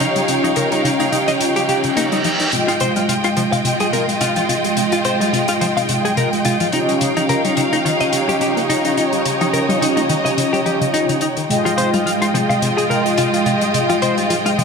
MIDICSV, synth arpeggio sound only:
0, 0, Header, 1, 2, 480
1, 0, Start_track
1, 0, Tempo, 560748
1, 243, Time_signature, 4, 2, 24, 8
1, 12533, End_track
2, 0, Start_track
2, 0, Title_t, "Synth arpeggio sound"
2, 0, Program_c, 0, 84
2, 5, Note_on_c, 0, 49, 74
2, 56, Note_off_c, 0, 49, 0
2, 138, Note_on_c, 0, 55, 70
2, 178, Note_off_c, 0, 55, 0
2, 247, Note_on_c, 0, 49, 78
2, 296, Note_off_c, 0, 49, 0
2, 377, Note_on_c, 0, 53, 75
2, 418, Note_off_c, 0, 53, 0
2, 484, Note_on_c, 0, 49, 73
2, 535, Note_off_c, 0, 49, 0
2, 617, Note_on_c, 0, 55, 97
2, 641, Note_off_c, 0, 55, 0
2, 724, Note_on_c, 0, 49, 78
2, 755, Note_off_c, 0, 49, 0
2, 857, Note_on_c, 0, 58, 71
2, 898, Note_off_c, 0, 58, 0
2, 963, Note_on_c, 0, 49, 71
2, 1014, Note_off_c, 0, 49, 0
2, 1097, Note_on_c, 0, 53, 71
2, 1138, Note_off_c, 0, 53, 0
2, 1203, Note_on_c, 0, 49, 77
2, 1280, Note_off_c, 0, 49, 0
2, 1336, Note_on_c, 0, 55, 71
2, 1378, Note_off_c, 0, 55, 0
2, 1445, Note_on_c, 0, 49, 75
2, 1521, Note_off_c, 0, 49, 0
2, 1579, Note_on_c, 0, 49, 73
2, 1602, Note_off_c, 0, 49, 0
2, 1684, Note_on_c, 0, 58, 88
2, 1735, Note_off_c, 0, 58, 0
2, 1816, Note_on_c, 0, 55, 96
2, 1857, Note_off_c, 0, 55, 0
2, 1924, Note_on_c, 0, 53, 71
2, 1975, Note_off_c, 0, 53, 0
2, 2056, Note_on_c, 0, 63, 96
2, 2118, Note_off_c, 0, 63, 0
2, 2165, Note_on_c, 0, 48, 74
2, 2215, Note_off_c, 0, 48, 0
2, 2298, Note_on_c, 0, 53, 73
2, 2339, Note_off_c, 0, 53, 0
2, 2406, Note_on_c, 0, 48, 72
2, 2456, Note_off_c, 0, 48, 0
2, 2538, Note_on_c, 0, 55, 97
2, 2562, Note_off_c, 0, 55, 0
2, 2644, Note_on_c, 0, 48, 78
2, 2674, Note_off_c, 0, 48, 0
2, 2778, Note_on_c, 0, 56, 71
2, 2819, Note_off_c, 0, 56, 0
2, 2885, Note_on_c, 0, 48, 72
2, 2935, Note_off_c, 0, 48, 0
2, 3016, Note_on_c, 0, 48, 71
2, 3041, Note_off_c, 0, 48, 0
2, 3123, Note_on_c, 0, 48, 78
2, 3200, Note_off_c, 0, 48, 0
2, 3256, Note_on_c, 0, 55, 72
2, 3297, Note_off_c, 0, 55, 0
2, 3365, Note_on_c, 0, 48, 75
2, 3415, Note_off_c, 0, 48, 0
2, 3497, Note_on_c, 0, 56, 72
2, 3538, Note_off_c, 0, 56, 0
2, 3604, Note_on_c, 0, 48, 74
2, 3634, Note_off_c, 0, 48, 0
2, 3737, Note_on_c, 0, 53, 77
2, 3778, Note_off_c, 0, 53, 0
2, 3844, Note_on_c, 0, 48, 72
2, 3895, Note_off_c, 0, 48, 0
2, 3977, Note_on_c, 0, 55, 74
2, 4018, Note_off_c, 0, 55, 0
2, 4084, Note_on_c, 0, 48, 77
2, 4135, Note_off_c, 0, 48, 0
2, 4216, Note_on_c, 0, 53, 72
2, 4258, Note_off_c, 0, 53, 0
2, 4323, Note_on_c, 0, 48, 72
2, 4374, Note_off_c, 0, 48, 0
2, 4455, Note_on_c, 0, 55, 96
2, 4481, Note_off_c, 0, 55, 0
2, 4562, Note_on_c, 0, 48, 78
2, 4594, Note_off_c, 0, 48, 0
2, 4695, Note_on_c, 0, 56, 69
2, 4737, Note_off_c, 0, 56, 0
2, 4802, Note_on_c, 0, 48, 72
2, 4854, Note_off_c, 0, 48, 0
2, 4934, Note_on_c, 0, 48, 69
2, 4960, Note_off_c, 0, 48, 0
2, 5043, Note_on_c, 0, 48, 74
2, 5120, Note_off_c, 0, 48, 0
2, 5176, Note_on_c, 0, 55, 73
2, 5217, Note_off_c, 0, 55, 0
2, 5283, Note_on_c, 0, 48, 70
2, 5334, Note_off_c, 0, 48, 0
2, 5417, Note_on_c, 0, 56, 73
2, 5458, Note_off_c, 0, 56, 0
2, 5524, Note_on_c, 0, 48, 74
2, 5554, Note_off_c, 0, 48, 0
2, 5656, Note_on_c, 0, 53, 77
2, 5697, Note_off_c, 0, 53, 0
2, 5764, Note_on_c, 0, 49, 71
2, 5815, Note_off_c, 0, 49, 0
2, 5895, Note_on_c, 0, 55, 72
2, 5937, Note_off_c, 0, 55, 0
2, 6003, Note_on_c, 0, 49, 75
2, 6055, Note_off_c, 0, 49, 0
2, 6136, Note_on_c, 0, 53, 74
2, 6178, Note_off_c, 0, 53, 0
2, 6243, Note_on_c, 0, 49, 69
2, 6295, Note_off_c, 0, 49, 0
2, 6375, Note_on_c, 0, 55, 99
2, 6401, Note_off_c, 0, 55, 0
2, 6483, Note_on_c, 0, 49, 77
2, 6514, Note_off_c, 0, 49, 0
2, 6615, Note_on_c, 0, 58, 71
2, 6657, Note_off_c, 0, 58, 0
2, 6723, Note_on_c, 0, 49, 72
2, 6774, Note_off_c, 0, 49, 0
2, 6855, Note_on_c, 0, 49, 71
2, 6880, Note_off_c, 0, 49, 0
2, 6961, Note_on_c, 0, 49, 75
2, 7039, Note_off_c, 0, 49, 0
2, 7095, Note_on_c, 0, 55, 72
2, 7137, Note_off_c, 0, 55, 0
2, 7200, Note_on_c, 0, 49, 72
2, 7253, Note_off_c, 0, 49, 0
2, 7334, Note_on_c, 0, 58, 76
2, 7377, Note_off_c, 0, 58, 0
2, 7442, Note_on_c, 0, 49, 76
2, 7473, Note_off_c, 0, 49, 0
2, 7576, Note_on_c, 0, 53, 76
2, 7618, Note_off_c, 0, 53, 0
2, 7683, Note_on_c, 0, 49, 71
2, 7735, Note_off_c, 0, 49, 0
2, 7816, Note_on_c, 0, 55, 69
2, 7857, Note_off_c, 0, 55, 0
2, 7923, Note_on_c, 0, 49, 77
2, 7975, Note_off_c, 0, 49, 0
2, 8056, Note_on_c, 0, 53, 73
2, 8097, Note_off_c, 0, 53, 0
2, 8162, Note_on_c, 0, 49, 71
2, 8214, Note_off_c, 0, 49, 0
2, 8295, Note_on_c, 0, 55, 98
2, 8320, Note_off_c, 0, 55, 0
2, 8403, Note_on_c, 0, 49, 77
2, 8434, Note_off_c, 0, 49, 0
2, 8535, Note_on_c, 0, 58, 70
2, 8577, Note_off_c, 0, 58, 0
2, 8643, Note_on_c, 0, 49, 72
2, 8695, Note_off_c, 0, 49, 0
2, 8776, Note_on_c, 0, 49, 72
2, 8801, Note_off_c, 0, 49, 0
2, 8883, Note_on_c, 0, 49, 76
2, 8960, Note_off_c, 0, 49, 0
2, 9017, Note_on_c, 0, 55, 72
2, 9058, Note_off_c, 0, 55, 0
2, 9124, Note_on_c, 0, 53, 73
2, 9201, Note_off_c, 0, 53, 0
2, 9256, Note_on_c, 0, 49, 72
2, 9281, Note_off_c, 0, 49, 0
2, 9364, Note_on_c, 0, 53, 74
2, 9441, Note_off_c, 0, 53, 0
2, 9496, Note_on_c, 0, 49, 76
2, 9521, Note_off_c, 0, 49, 0
2, 9603, Note_on_c, 0, 51, 70
2, 9654, Note_off_c, 0, 51, 0
2, 9736, Note_on_c, 0, 51, 91
2, 9777, Note_off_c, 0, 51, 0
2, 9845, Note_on_c, 0, 48, 78
2, 9896, Note_off_c, 0, 48, 0
2, 9978, Note_on_c, 0, 53, 72
2, 10019, Note_off_c, 0, 53, 0
2, 10084, Note_on_c, 0, 48, 72
2, 10135, Note_off_c, 0, 48, 0
2, 10220, Note_on_c, 0, 55, 97
2, 10243, Note_off_c, 0, 55, 0
2, 10326, Note_on_c, 0, 53, 78
2, 10376, Note_off_c, 0, 53, 0
2, 10458, Note_on_c, 0, 56, 71
2, 10499, Note_off_c, 0, 56, 0
2, 10565, Note_on_c, 0, 48, 72
2, 10616, Note_off_c, 0, 48, 0
2, 10697, Note_on_c, 0, 48, 74
2, 10722, Note_off_c, 0, 48, 0
2, 10805, Note_on_c, 0, 48, 78
2, 10881, Note_off_c, 0, 48, 0
2, 10940, Note_on_c, 0, 55, 72
2, 10979, Note_off_c, 0, 55, 0
2, 11045, Note_on_c, 0, 48, 73
2, 11095, Note_off_c, 0, 48, 0
2, 11177, Note_on_c, 0, 56, 73
2, 11218, Note_off_c, 0, 56, 0
2, 11285, Note_on_c, 0, 48, 74
2, 11315, Note_off_c, 0, 48, 0
2, 11416, Note_on_c, 0, 53, 73
2, 11458, Note_off_c, 0, 53, 0
2, 11523, Note_on_c, 0, 48, 71
2, 11575, Note_off_c, 0, 48, 0
2, 11656, Note_on_c, 0, 55, 71
2, 11698, Note_off_c, 0, 55, 0
2, 11764, Note_on_c, 0, 48, 75
2, 11815, Note_off_c, 0, 48, 0
2, 11896, Note_on_c, 0, 53, 74
2, 11938, Note_off_c, 0, 53, 0
2, 12004, Note_on_c, 0, 48, 71
2, 12055, Note_off_c, 0, 48, 0
2, 12135, Note_on_c, 0, 55, 97
2, 12161, Note_off_c, 0, 55, 0
2, 12243, Note_on_c, 0, 53, 81
2, 12295, Note_off_c, 0, 53, 0
2, 12374, Note_on_c, 0, 56, 71
2, 12417, Note_off_c, 0, 56, 0
2, 12483, Note_on_c, 0, 48, 71
2, 12533, Note_off_c, 0, 48, 0
2, 12533, End_track
0, 0, End_of_file